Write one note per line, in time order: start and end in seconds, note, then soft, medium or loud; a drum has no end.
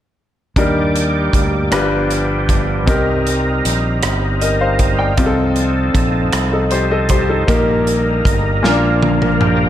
0.56 1.29 D#2 medium
0.56 1.73 G3 soft
0.56 1.69 G3 soft
0.56 1.72 A#3 soft
0.56 1.39 D4 medium
0.56 1.39 D#4 medium
0.56 1.72 G4 soft
0.56 1.39 G4 soft
0.56 1.40 A#4 medium
0.56 1.72 D5 soft
0.56 kick medium
0.56 closed hi-hat medium
0.96 closed hi-hat soft
1.33 1.69 D2 medium
1.33 kick medium
1.33 closed hi-hat medium
1.71 2.88 G1 medium
1.71 2.84 G2 medium
1.71 2.88 F3 soft
1.71 2.88 B3 soft
1.71 2.54 D4 medium
1.71 2.88 D4 soft
1.71 2.54 F4 soft
1.71 2.54 G4 soft
1.71 2.88 G4 medium
1.71 2.54 B4 medium
1.71 cross-stick medium
1.71 closed hi-hat medium
2.11 closed hi-hat soft
2.49 kick medium
2.49 closed hi-hat soft
2.85 3.61 C2 medium
2.85 3.99 C3 soft
2.85 5.13 G3 soft
2.85 5.13 C4 soft
2.85 3.69 C4 medium
2.85 5.13 D#4 soft
2.85 3.69 D#4 medium
2.85 3.70 G4 medium
2.85 2.93 A4 soft
2.85 3.70 A#4 medium
2.85 kick medium
2.85 closed hi-hat medium
2.91 5.16 A#4 medium
3.27 closed hi-hat soft
3.65 4.00 A#1 medium
3.65 closed hi-hat soft
4.03 5.15 G1 medium
4.03 cross-stick medium
4.03 closed hi-hat medium
4.41 4.60 A#4 soft
4.41 4.60 D#5 soft
4.41 closed hi-hat soft
4.60 4.97 C5 soft
4.60 4.97 F5 medium
4.79 kick medium
4.79 closed hi-hat soft
4.99 5.36 D5 soft
4.99 5.35 G5 soft
5.17 5.91 C2 medium
5.17 6.29 C3 medium
5.17 7.44 F3 soft
5.17 7.44 C4 soft
5.17 6.00 C4 medium
5.17 6.00 D#4 medium
5.17 7.45 D#4 soft
5.17 6.00 F4 medium
5.17 5.25 G4 medium
5.17 7.44 A4 medium
5.17 kick medium
5.17 closed hi-hat medium
5.26 6.04 A4 medium
5.56 closed hi-hat soft
5.94 6.30 A#1 medium
5.94 kick medium
5.94 closed hi-hat medium
6.33 7.45 C2 medium
6.33 cross-stick medium
6.33 closed hi-hat medium
6.53 6.71 D#4 soft
6.53 6.71 A4 soft
6.71 6.90 G4 soft
6.71 6.90 C5 medium
6.71 closed hi-hat soft
6.91 7.10 A4 soft
6.91 7.09 D#5 soft
7.09 7.28 G4 soft
7.09 7.28 C5 medium
7.09 kick medium
7.09 closed hi-hat soft
7.29 7.47 D#4 soft
7.29 7.66 A4 soft
7.47 8.21 A#1 medium
7.47 8.59 A#2 soft
7.47 7.56 F#3 soft
7.47 8.29 A#3 medium
7.47 8.63 A#3 soft
7.47 8.30 D#4 medium
7.47 8.65 D#4 soft
7.47 8.30 G4 medium
7.47 8.30 A#4 medium
7.47 8.63 A#4 medium
7.47 kick medium
7.47 closed hi-hat medium
7.57 8.68 G3 soft
7.87 closed hi-hat soft
8.25 8.60 G1 medium
8.25 kick medium
8.25 closed hi-hat medium
8.62 9.69 A#1 medium
8.62 9.69 A#2 medium
8.62 9.69 F3 medium
8.62 9.44 A#3 medium
8.62 9.69 A#3 soft
8.62 8.69 C#4 soft
8.62 9.69 D4 soft
8.62 9.45 F4 soft
8.62 9.40 F4 medium
8.62 9.45 A#4 medium
8.62 9.38 A#4 medium
8.62 snare soft
8.69 9.48 D4 medium
9.03 high tom soft
9.22 mid tom soft
9.40 9.69 F4 soft
9.40 9.69 G4 medium
9.40 9.69 A#4 medium
9.40 mid tom medium